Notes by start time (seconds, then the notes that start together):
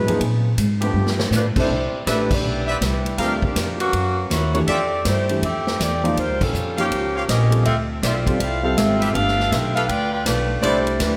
Already playing: B4
0.06 E2 C#3 F3 A#3 C4 D#4 G#4, ride
0.20 A#2, kick, ride
0.58 G#2, kick, hi-hat pedal, ride
0.80 F3 A3 B3 D4 G4 B4, ride
0.94 G2
1.07 snare
1.20 snare
1.30 A2, snare, hi-hat pedal
1.36 A3 D4 F4 B4
1.56 C3 A3 D4 E4 G4 A4 C5, muted upright bass stroke, kick, crash
1.60 G3 D4
1.69 C2, kick
1.92 muted upright bass stroke
2.06 A1 A3 D4 G4 B4 D5 E5, kick, snare, hi-hat pedal, ride
2.11 G3 D4 E4 B4
2.31 B3 E4 G4 D5, kick, crash
2.43 B1
2.67 B4 C5 D5 E5
2.81 C2 G3 E4 B4, kick, snare, hi-hat pedal, ride
2.86 D4
3.06 ride
3.18 D2 G3 C4 D4 F4 G4 A4 A#4 F5, kick, ride
3.22 F3 A3 A#4
3.42 F3 D4 G4, kick
3.47 A#3
3.56 F2, kick, snare, hi-hat pedal, ride
3.80 E3 A#3 C#4 F#4, ride
3.93 F#2, kick, ride
4.30 D#2 A#3 E4 F#4 C#5, kick, snare, hi-hat pedal, ride
4.53 E3 A3 A#3 D4 E4 F#4 G4 C#5, ride
4.67 F2 C4 F4 G4 A4 D5 E5, kick, ride
5.05 G2 A3 E4 G4 C5, kick, snare, hi-hat pedal, ride
5.29 E3 A3 D4 G4, ride
5.42 F2 C4 G4 A4 E5, kick, ride
5.67 snare
5.80 E2 C4 G4 A4 D5, kick, snare, hi-hat pedal, ride
6.03 F3 A#3 D#4 F4, ride
6.17 D#2 A#3 F4 G4 C5, kick, ride
6.29 C#2
6.40 A#1 G3 C#4 F4 A4, kick, crash
6.53 F2, hi-hat pedal
6.77 F3 A#3 C#4 D#4 G4 C5 C#5 F5, ride
6.91 C#2, kick, ride
7.15 G4 C5 C#5 F5
7.28 A#1 C#4 G4 A#4 D#5, kick, snare, hi-hat pedal, ride
7.50 G3 C4 F4 A4, ride
7.65 D2 C4 F4 A4 E5, kick, ride
8.02 B1 C4 F4 A4 C5 D5 E5, kick, snare, hi-hat pedal, ride
8.26 G3 C4 F4 A4, kick, ride
8.40 C2 C4 E4 A4 F5, kick, ride
8.63 G3 C4 E4 F4 A4 F5
8.77 G#1 C4 F4 A4 E5, kick, snare, hi-hat pedal, ride
9.00 G4 A4 B4 E5, ride
9.13 G1 A3 D4 G4 A4 B4 F5, kick, ride
9.28 snare
9.40 snare
9.51 B1 C4 F4 A4 E5, kick, snare, hi-hat pedal, ride
9.74 D4 G4 A4 B4 F5, ride
9.88 D2 F4 B4 D5 G5, kick, ride
10.13 F4 B4 D5 G5
10.26 B1 A3 D4 F4 B4, kick, snare, hi-hat pedal, ride
10.61 C2 G3 A3 D4 E4 G4 B4 C5 D5, kick, ride
10.65 D4 E4
10.87 ride
11.00 D2 G3 D4 E4 B4, kick, snare, hi-hat pedal, ride